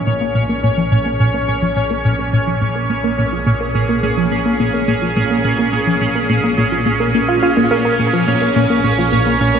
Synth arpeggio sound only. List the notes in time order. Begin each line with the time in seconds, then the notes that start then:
0.07 A#2
0.21 A#3
0.35 A#2
0.49 A#3
0.63 A#2
0.77 F3
0.91 A#2
1.06 A#3
1.20 A#2
1.34 A#3
1.48 A#2
1.62 F3
1.76 A#2
1.91 A#3
2.05 A#2
2.19 A#3
2.33 A#2
2.47 F3
2.61 A#2
2.75 A#3
2.90 A#2
3.04 A#3
3.18 A#2
3.32 F3
3.47 A#2
3.61 A#3
3.75 A#2
3.89 A#3
4.03 A#2
4.17 F3
4.31 A#2
4.46 A#3
4.60 A#2
4.74 A#3
4.88 A#2
5.02 F3
5.16 A#2
5.30 A#3
5.45 A#2
5.59 A#3
5.73 A#2
5.87 F3
6.01 A#2
6.15 A#3
6.30 A#2
6.44 A#3
6.58 A#2
6.72 F3
6.86 A#2
7.00 A#3
7.14 A#2
7.29 F4
7.43 F4
7.57 A#2
7.71 A#3
7.85 A#3
7.99 A#2
8.13 F3
8.27 A#2
8.42 A#3
8.56 A#2
8.70 A#3
8.84 A#2
8.98 F3
9.12 A#2
9.27 A#3
9.41 A#2
9.55 A#3